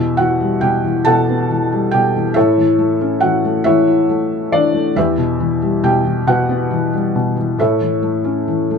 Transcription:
0.00 2.32 E2 medium
0.00 0.61 B2 soft
0.00 0.16 E4 medium
0.00 0.16 G4 medium
0.00 0.15 B4 medium
0.00 0.19 E5 medium
0.17 0.83 E3 soft
0.17 0.60 F#4 medium
0.17 0.63 F#5 medium
0.40 1.71 G3 soft
0.61 1.05 B2 soft
0.61 1.04 G4 medium
0.61 1.07 G5 medium
0.84 1.49 E3 soft
1.05 1.93 B2 medium
1.05 1.89 A4 medium
1.05 1.89 F#5 medium
1.05 1.95 A5 medium
1.29 2.33 B3 soft
1.50 2.14 E3 medium
1.72 2.34 G3 soft
1.91 2.35 B2 soft
1.91 2.33 G4 medium
1.91 2.36 G5 medium
2.16 2.36 E3 soft
2.34 4.92 A2 medium
2.34 3.18 E4 medium
2.34 3.18 A4 medium
2.34 3.18 C#5 medium
2.34 3.23 E5 medium
2.58 3.22 E3 soft
2.79 3.43 A3 soft
3.01 4.70 C#4 soft
3.20 3.65 E3 soft
3.20 3.62 F#4 medium
3.20 3.66 F#5 medium
3.45 4.08 A3 medium
3.64 4.51 E3 medium
3.64 3.86 E4 medium
3.64 4.49 C#5 medium
3.64 4.54 E5 medium
3.87 4.93 E4 soft
4.09 4.73 A3 soft
4.52 4.95 E3 soft
4.52 4.94 D4 medium
4.52 4.97 D5 medium
4.74 4.95 A3 medium
4.96 7.55 E2 medium
4.96 5.80 E4 medium
4.96 5.81 G4 medium
4.96 5.80 B4 medium
4.96 5.86 E5 medium
5.18 5.82 B2 soft
5.40 6.03 E3 medium
5.62 6.92 G3 soft
5.84 6.26 B2 medium
5.84 6.25 G4 medium
5.84 6.29 G5 medium
6.05 6.69 E3 medium
6.27 7.14 B2 medium
6.27 7.56 F#4 medium
6.27 7.56 B4 medium
6.27 7.63 F#5 medium
6.49 7.56 B3 soft
6.71 7.35 E3 medium
6.93 7.57 G3 soft
7.15 7.58 B2 soft
7.37 7.58 E3 soft
7.58 8.78 A2 medium
7.58 8.78 E4 medium
7.58 8.78 A4 soft
7.58 8.78 C#5 soft
7.58 8.78 E5 medium
7.81 8.46 E3 soft
8.02 8.69 A3 soft
8.24 8.78 C#4 soft
8.48 8.78 E3 soft
8.71 8.78 A3 medium

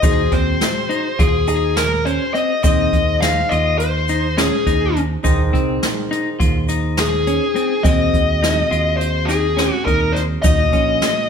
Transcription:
0.02 0.28 D#2 loud
0.02 0.21 D#4 medium
0.02 2.59 F#4 medium
0.02 2.59 G#4 medium
0.02 0.33 G#4 medium
0.02 2.59 C5 medium
0.02 kick loud
0.02 closed hi-hat medium
0.02 shaker medium
0.32 0.56 D#2 medium
0.32 0.67 C4 medium
0.32 1.22 C5 medium
0.32 kick medium
0.32 closed hi-hat medium
0.61 snare loud
0.61 closed hi-hat medium
0.61 shaker soft
0.89 1.07 D#4 medium
0.89 closed hi-hat medium
1.19 2.17 D#2 medium
1.19 1.36 F4 medium
1.19 1.46 G#4 medium
1.19 kick loud
1.19 snare soft
1.19 closed hi-hat medium
1.48 1.83 D#4 medium
1.48 1.77 G#4 medium
1.48 closed hi-hat medium
1.48 shaker soft
1.77 2.04 A#4 medium
1.77 snare loud
1.77 closed hi-hat medium
2.05 2.23 C#4 medium
2.05 2.32 C5 medium
2.05 closed hi-hat medium
2.34 2.52 C4 medium
2.34 2.62 D#5 medium
2.34 closed hi-hat medium
2.63 2.88 D#2 medium
2.63 5.20 D#3 medium
2.63 2.99 C4 medium
2.63 5.20 D#4 medium
2.63 5.20 G#4 medium
2.63 5.20 C5 medium
2.63 3.23 D#5 medium
2.63 kick loud
2.63 closed hi-hat medium
2.63 shaker medium
2.93 3.42 D#2 medium
2.93 kick medium
2.93 closed hi-hat medium
3.21 3.39 D#4 medium
3.21 3.51 F5 medium
3.21 snare loud
3.21 closed hi-hat medium
3.49 4.49 D#2 medium
3.49 3.86 F4 medium
3.49 3.78 D#5 medium
3.49 closed hi-hat medium
3.78 4.39 C5 medium
3.78 closed hi-hat medium
4.08 4.27 D#4 medium
4.08 closed hi-hat medium
4.08 shaker soft
4.37 4.55 C#4 medium
4.37 4.99 G#4 medium
4.37 snare loud
4.37 closed hi-hat medium
4.67 5.15 D#2 medium
4.67 5.01 D#4 medium
4.67 kick medium
4.67 snare soft
4.67 closed hi-hat medium
4.96 closed hi-hat medium
5.23 5.54 D#2 loud
5.23 7.80 D#3 medium
5.23 7.80 D#4 medium
5.23 5.42 D#4 medium
5.23 7.80 G#4 medium
5.23 7.80 C5 medium
5.23 kick loud
5.23 closed hi-hat medium
5.23 shaker medium
5.53 5.78 C2 medium
5.53 5.88 C4 medium
5.53 kick medium
5.53 closed hi-hat medium
5.83 snare loud
5.83 closed hi-hat medium
6.11 6.28 D#4 medium
6.11 snare soft
6.11 closed hi-hat medium
6.40 7.38 D#2 medium
6.40 6.57 F4 medium
6.40 kick loud
6.40 closed hi-hat medium
6.69 7.03 D#4 medium
6.69 closed hi-hat medium
6.69 shaker soft
6.97 7.88 G#4 medium
6.97 snare loud
6.97 closed hi-hat medium
7.27 7.44 C#4 medium
7.27 closed hi-hat medium
7.56 7.73 C4 medium
7.56 closed hi-hat medium
7.83 8.09 D#2 medium
7.83 8.19 C4 loud
7.83 10.40 C4 medium
7.83 10.40 F#4 medium
7.83 10.41 G#4 medium
7.83 8.97 D#5 loud
7.83 kick loud
7.83 closed hi-hat medium
7.83 shaker medium
8.13 8.62 D#2 medium
8.13 kick medium
8.13 closed hi-hat medium
8.43 8.60 D#4 medium
8.43 snare loud
8.43 closed hi-hat medium
8.71 9.69 D#2 medium
8.71 9.06 F4 medium
8.71 closed hi-hat medium
8.97 9.28 C5 medium
8.97 closed hi-hat medium
9.25 9.46 D#4 medium
9.25 9.73 G#4 medium
9.25 shaker soft
9.30 snare soft
9.30 closed hi-hat medium
9.57 9.75 C#4 medium
9.57 snare loud
9.57 closed hi-hat medium
9.73 9.85 F#4 medium
9.85 10.36 D#2 medium
9.85 10.22 D#4 medium
9.85 10.16 A#4 medium
9.85 kick medium
9.85 closed hi-hat medium
10.12 10.21 C5 medium
10.12 snare soft
10.12 closed hi-hat medium
10.42 10.73 D#2 loud
10.42 11.29 D#3 medium
10.42 11.29 A#3 medium
10.42 11.29 C#4 medium
10.42 10.62 D#4 medium
10.42 11.29 F#4 medium
10.42 11.29 D#5 medium
10.42 kick loud
10.42 closed hi-hat medium
10.42 shaker medium
10.73 10.98 A#1 medium
10.73 11.08 C#4 medium
10.73 kick medium
10.73 closed hi-hat medium
10.73 shaker soft
11.02 snare loud
11.02 closed hi-hat medium
11.02 shaker soft

